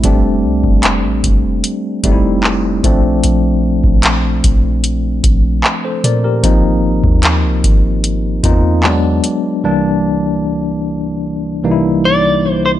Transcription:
0.03 F1 G3 A3 C4 D4, kick, closed hi-hat
0.44 C2
0.64 F1, kick
0.83 clap, closed hi-hat
1.04 A1
1.24 F1, kick, closed hi-hat
1.64 closed hi-hat
2.04 F1 G3 A3 C4 D#4, kick, closed hi-hat
2.12 E4
2.44 clap
2.84 A#1 F3 A3 C4 D4, kick, closed hi-hat
3.24 A#1, closed hi-hat
3.84 A#1, kick
4.03 clap, closed hi-hat
4.44 A#1, kick, closed hi-hat
4.84 closed hi-hat
5.24 A#1, kick, closed hi-hat
5.64 clap
5.84 A4 C5
6.04 A#2 A#4 D5, closed hi-hat
6.24 G4 A#4
6.43 G#1 F3 A#3 C4 D#4, kick, closed hi-hat
7.04 D#2, kick
7.23 clap, closed hi-hat
7.44 C2
7.64 G#1, kick, closed hi-hat
8.04 closed hi-hat
8.43 E2 A#3 C4 D#4 F4, kick, closed hi-hat
8.83 F#3 G#3 B3 D4, clap
9.24 closed hi-hat
9.64 C2 E3 G3 A#3 D4
11.63 C2 E3 G3 A#3 D#4
11.71 E4
12.05 D5
12.52 C5
12.66 C5

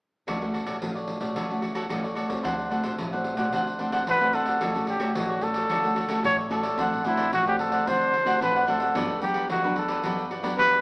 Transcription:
0.27 D2 D3 A3 C#4 F#4 A4 C#5 D5, pandeiro
0.42 A3 C#4 F#4, pandeiro
0.53 F#4 A4 C#5 D5, pandeiro
0.66 A1 F#4 A4 C#5 D5, pandeiro
0.81 A1 A2 A3 C#4 F#4, pandeiro
0.95 A4 C#5 D5, pandeiro
1.07 pandeiro
1.20 A1 A3 C#4 F#4 A4 C#5 D5, pandeiro
1.35 D2 D3 F#4 A4 C#5 D5, pandeiro
1.50 A3 C#4 F#4, pandeiro
1.62 F#4 A4 C#5 D5, pandeiro
1.75 F#4 A4 C#5 D5, pandeiro
1.89 A1 A2 A3 C#4 F#4 A4 C#5 D5, pandeiro
2.03 A4 C#5 D5, pandeiro
2.15 F#4 A4 C#5 D5, pandeiro
2.28 D2 A3 C4 F#4 A4 C#5 D5, pandeiro
2.43 D2 D3 D4 C5 D5 F#5, pandeiro
2.60 pandeiro
2.70 A3 C4 D4 F#4 C5 D5 F#5, pandeiro
2.83 A1 D4 C5 D5 F#5, pandeiro
2.98 A1 A2, pandeiro
3.13 A3 C4 F#4 C5 D5 F#5, pandeiro
3.24 pandeiro
3.37 A1 A3 C4 F#4 C5 D5 F#5, pandeiro
3.52 D2 D3 A3 C4 D4 F#4 C5 D5 F#5, pandeiro
3.67 pandeiro
3.79 A3 C4 D4 F#4 C5 D5 F#5, pandeiro
3.92 D4 C5 D5 F#5, pandeiro
4.07 A1 A2 D4 B4 C5 D5 F#5, pandeiro
4.20 A3 C4 F#4 C5 D5 F#5, pandeiro
4.33 D4 A4 C5 D5 F#5, pandeiro
4.46 D2 C5 D5 F#5, pandeiro
4.61 D2 D3 A3 C#4 F#4 A4 C#5 D5, pandeiro
4.75 A1 A3 C#4 F#4, pandeiro
4.87 F#4 G4 A4 C#5 D5, pandeiro
5.00 A3 C#4 F#4 A4 C#5 D5, pandeiro
5.15 A1 A2 F#4, pandeiro
5.29 A4 C#5 D5, pandeiro
5.41 A3 C#4 F#4 A4, pandeiro
5.54 A4 C#5 D5, pandeiro
5.69 D3 F#4 A4 C#5 D5, pandeiro
5.83 A3 C#4 F#4, pandeiro
5.96 F#4 A4 C#5 D5, pandeiro
6.08 A3 C#4 F#4 A4 C#5 D5, pandeiro
6.24 A1 A2 F#4 A4 C#5 D5, pandeiro
6.38 A4 C#5 D5, pandeiro
6.50 A3 C#4 F#4 A4 C#5 D5, pandeiro
6.63 A4 C#5 D5, pandeiro
6.77 D2 D3 A3 C4 D4 F#4 C5 D5 F#5, pandeiro
6.93 A1, pandeiro
7.04 A3 C4 D4 E4 F#4 C5 D5 F#5, pandeiro
7.17 D4 C5 D5 F#5, pandeiro
7.32 A1 A2 F#4, pandeiro
7.46 A3 C4 F#4 G4 C5 D5 F#5, pandeiro
7.59 A4, pandeiro
7.72 C5 D5 F#5, pandeiro
7.86 D3 A3 C4 D4 F#4 C5 D5 F#5, pandeiro
8.01 pandeiro
8.13 D4 C5 D5 F#5, pandeiro
8.25 A3 C4 D4 F#4 C5 D5 F#5, pandeiro
8.40 A1 A2 D4 B4 C5 D5 F#5, pandeiro
8.56 C5 D5 F#5, pandeiro
8.66 A3 C4 D4 F#4 A4 C5 D5 F#5, pandeiro
8.80 C5 D5 F#5, pandeiro
8.94 G1 G2 F#3 B3 D4 F#4 G4 B4 D5, pandeiro
9.09 D2, pandeiro
9.21 F#3 B3 D4 F#4 G4 B4 D5, pandeiro
9.34 F#4 G4 B4 D5, pandeiro
9.49 D2 D3 F#4, pandeiro
9.63 F#3 B3 D4 G4 B4 D5, pandeiro
9.76 A4, pandeiro
9.88 G4 B4 D5, pandeiro
10.03 G2 F#3 B3 D4 F#4 G4 B4 D5, pandeiro
10.18 pandeiro
10.30 F#4 G4 B4 D5, pandeiro
10.43 F#3 B3 D4 F#4 G4 B4 D5, pandeiro
10.58 D2 D3 F#4 G4 B4 D5, pandeiro
10.73 G4 B4 D5, pandeiro

